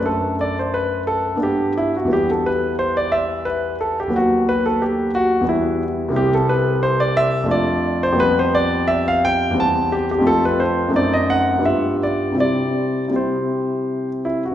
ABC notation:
X:1
M:3/4
L:1/16
Q:1/4=88
K:Em
V:1 name="Grand piano"
A2 d c B2 A2 G2 E F | G A B2 c d e2 B2 A G | F2 B A G2 F2 E2 z2 | [K:C] G A B2 c d e2 d3 c |
B c d2 e f g2 a2 G G | A B c2 d ^d ^f2 e2 =d2 | d4 c6 E ^F |]
V:2 name="Grand piano"
[F,,A,D]8 [G,,B,D]4 | [E,,G,B,E]12 | [^D,,F,B,]8 [E,,G,B,]4 | [K:C] [C,,G,CE]8 [F,,A,DF]4 |
[F,,G,B,G]8 [E,,G,CG]4 | [F,,A,CF]4 [^F,,A,C^D]4 [G,,G,B,=F]4 | [C,G,CE]4 [C,G,CE]8 |]